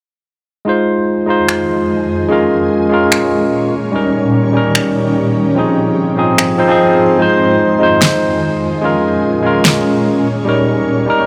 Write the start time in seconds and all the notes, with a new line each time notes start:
0.65 F2 D#3 G#3 D#4 F4
0.69 C5
1.26 G#3 D#4 F4
1.30 C5
1.49 finger snap
2.28 A#2 G#3 C#4 F4 A#4
2.89 G#3 C#4 F4
2.94 A#4
3.12 finger snap
3.73 D#3 G3
3.92 G3 C#4 D#4
3.96 A#4
4.53 G3 C#4 D#4
4.57 A#4
4.75 finger snap
5.55 G#2 F3 C4 D#4 G#4
6.17 F3 C4 D#4 G#4
6.38 finger snap
6.58 F3 C4 D#4 C5
6.68 F3 C4 D#4
6.72 G#4
7.18 F2 D#3 G#3 D#4 F4 C5
7.79 G#3 D#4 F4
7.83 C5
8.02 finger snap, snare
8.81 A#2 G#3 C#4 F4 A#4
9.43 G#3 C#4 F4 A#4
9.65 finger snap, snare
10.26 A#2 D#3 G3
10.45 G3 C#4 D#4
10.49 A#4
11.06 G3 C#4 D#4
11.10 A#4